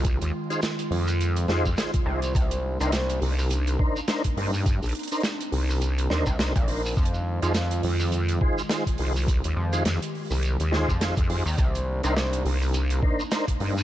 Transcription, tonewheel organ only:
X:1
M:4/4
L:1/16
Q:"Swing 16ths" 1/4=104
K:Cm
V:1 name="Tonewheel organ"
z3 [EFAc] z6 [EFAc] z [EFAc] z [EFAc] z | z3 [DEBc] z6 [DEBc] z [DEBc] z [DEBc] z | z3 [DEBc] z6 [DEBc] z [DEBc] z [DEBc] z | z3 [EFAc] z6 [EFAc] z [EFAc] z [EFAc] z |
z3 [EFAc] z6 [EFAc] z [EFAc] z [EFAc] z | z3 [DEBc] z6 [DEBc] z [DEBc] z [DEBc] z |]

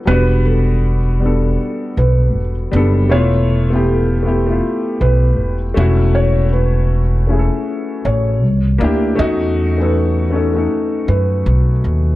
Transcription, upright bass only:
X:1
M:4/4
L:1/8
Q:"Swing 16ths" 1/4=79
K:Edor
V:1 name="Upright bass" clef=bass
E,,,4 z B,,, E,,, F,,, | E,,,4 z B,,, E,,, E,,,- | E,,,4 z A,,, =C,, D,, | E,,4 z F,, B,,, ^D,, |]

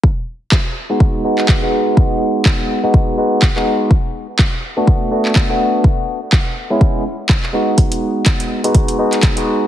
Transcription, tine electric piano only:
X:1
M:4/4
L:1/16
Q:"Swing 16ths" 1/4=124
K:G#phr
V:1 name="Tine electric piano"
z6 z [G,B,DF]3 [G,B,DF]3 [G,B,DF]3- | [G,B,DF]6- [G,B,DF] [G,B,DF]3 [G,B,DF]2 z [G,B,DF]3 | z6 z [A,B,=DF]3 [A,B,DF]3 [A,B,DF]3 | z6 z [G,B,CE]3 z4 [G,B,DF]2- |
[G,B,DF]6- [G,B,DF] [G,B,DF]3 [G,B,DF]3 [G,B,DF]3 |]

